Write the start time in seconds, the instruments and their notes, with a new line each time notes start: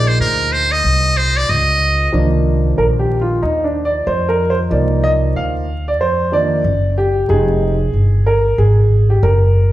Already playing: upright bass A#1, upright piano F3 A#3 D#4 G#4
0.08 muted trumpet C5
0.20 upright bass D2, muted trumpet A#4
0.52 muted trumpet C5
0.72 muted trumpet D#5
0.84 upright bass C2
1.17 muted trumpet C5
1.37 muted trumpet D5
1.49 upright bass C#2, muted trumpet D#5
2.12 upright bass C2, upright piano D#3 F3 A#3 D4
2.78 upright bass A#1, upright piano A#4
2.99 upright piano G4
3.21 upright piano F4
3.43 upright bass D#2, upright piano D#4
3.64 upright piano D4
3.85 upright piano D5
4.07 upright bass F2, upright piano C5
4.29 upright piano A#4
4.50 upright piano C5
4.70 upright bass C2, upright piano F3 A#3 D#4 D5
5.04 upright piano D#5
5.36 upright bass D2, upright piano F5
5.88 upright piano D5
6.00 upright bass F2, upright piano C5
6.32 upright piano D#3 F3 A#3 D4 D5
6.64 upright bass F#1
6.98 upright piano G4
7.28 upright bass F1, upright piano G#3 D#4 G4 G#4
7.93 upright bass G1
8.26 upright piano A#4
8.58 upright bass G#1, upright piano G#4
9.10 upright piano G4
9.23 upright bass F#1, upright piano A#4